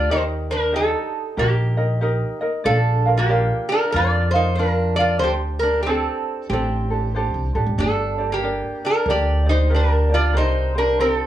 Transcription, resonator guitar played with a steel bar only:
0.00 0.11 D5 medium
0.11 0.23 D#4 medium
0.11 0.22 C5 medium
0.51 0.74 D4 medium
0.51 0.75 A#4 medium
0.76 1.35 D#4 medium
0.76 1.41 A4 medium
1.39 2.39 A#3 medium
1.39 2.38 G4 medium
2.66 3.14 D4 medium
2.66 3.19 A4 loud
3.17 3.67 A#3 medium
3.17 3.71 G4 medium
3.69 3.92 D4 medium
3.69 3.94 A#4 medium
3.92 4.32 F4 medium
3.92 4.30 D5 loud
4.31 4.55 C5 medium
4.35 4.57 D#4 medium
4.55 4.96 D4 medium
4.55 4.94 A#4 medium
4.96 5.19 D5 loud
5.00 5.22 F4 medium
5.19 5.30 C5 loud
5.24 5.34 G4 medium
5.59 5.85 D4 medium
5.59 5.82 A#4 medium
5.83 6.46 C4 medium
5.83 6.49 A4 medium
6.50 7.51 C4 medium
6.50 7.50 G4 medium
7.79 8.27 D4 medium
7.79 8.33 A4 medium
8.32 8.79 A#3 medium
8.32 8.85 G4 medium
8.85 9.06 D4 medium
8.85 9.09 A#4 medium
9.10 9.45 G4 medium
9.10 9.49 D5 medium
9.49 9.70 D#4 medium
9.49 9.73 C5 medium
9.74 10.09 D4 medium
9.74 10.14 A#4 medium
10.14 10.35 F4 medium
10.14 10.36 D5 medium
10.37 10.73 D#4 medium
10.37 10.76 C5 medium
10.78 10.99 D4 medium
10.78 11.00 A#4 medium
11.00 11.27 C4 medium
11.00 11.11 A#4 medium
11.11 11.27 A4 medium

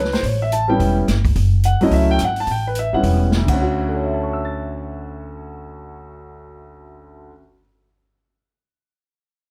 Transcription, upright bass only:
0.00 0.20 C#2 medium
0.23 0.76 A1 medium
0.80 1.06 E1 medium
1.08 1.34 G1 medium
1.36 1.77 F#1 medium
1.82 1.90 E1 medium
1.91 2.17 C#2 medium
2.20 2.46 G#1 medium
2.48 2.89 A1 medium
2.93 3.03 G#1 medium
3.03 3.45 E1 medium
3.48 7.31 D2 medium

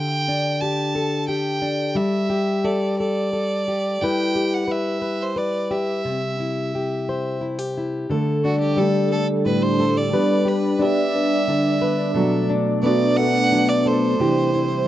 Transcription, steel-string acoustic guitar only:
0.00 1.97 D3 medium
0.00 0.62 G4 medium
0.28 1.61 D4 medium
0.62 1.28 G4 medium
0.95 2.63 A4 medium
1.29 2.29 G4 medium
1.62 1.92 D4 medium
1.95 4.01 G3 medium
2.30 3.67 G4 medium
2.64 2.99 A4 medium
3.00 3.32 A4 medium
3.33 4.01 A4 medium
3.68 4.03 G4 medium
4.02 8.10 G3 medium
4.02 6.02 E4 medium
4.02 4.35 G4 medium
4.02 4.66 B4 medium
4.35 5.70 G4 medium
4.68 5.00 B4 medium
5.02 5.35 B4 medium
5.36 6.01 B4 medium
5.71 6.75 G4 medium
6.05 8.05 C3 medium
6.40 7.40 E4 medium
6.75 7.41 G4 medium
7.09 8.06 C5 medium
7.41 7.59 E4 soft
7.59 8.09 G4 soft
7.77 8.06 E4 medium
8.10 10.13 D3 medium
8.10 9.79 A4 medium
8.45 10.79 D4 medium
8.77 10.12 G3 medium
9.45 10.13 A2 medium
9.80 10.13 A4 medium
10.13 12.16 G3 medium
10.13 11.80 B4 medium
10.45 12.11 G4 medium
10.79 12.11 D4 medium
11.48 12.16 D3 medium
11.82 12.12 B4 medium
12.14 14.14 B2 medium
12.14 13.85 A4 medium
12.50 14.15 D4 medium
12.83 14.15 B3 medium
13.52 14.15 F#3 medium
13.86 14.19 A4 medium
14.20 14.88 C3 medium
14.20 14.88 G4 medium
14.55 14.88 E4 medium

